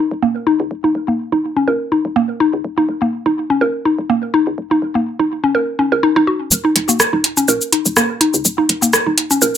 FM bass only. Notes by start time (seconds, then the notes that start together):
0.11 D#1
0.60 C#2
0.71 D#1
0.95 D#1
1.32 D#1
1.68 A#1
2.05 D#1
2.53 C#2
2.64 D#1
2.89 D#1
3.26 D#1
3.61 A#1
3.98 D#1
4.47 C#2
4.58 D#1
4.82 D#1
5.19 D#1
5.92 C#2
6.16 D#1
6.51 D#1
6.76 D#1
7.13 D#1
7.48 A#1
7.86 D#1
8.34 C#2
8.45 D#1
8.69 D#1
9.07 D#1
9.42 A#1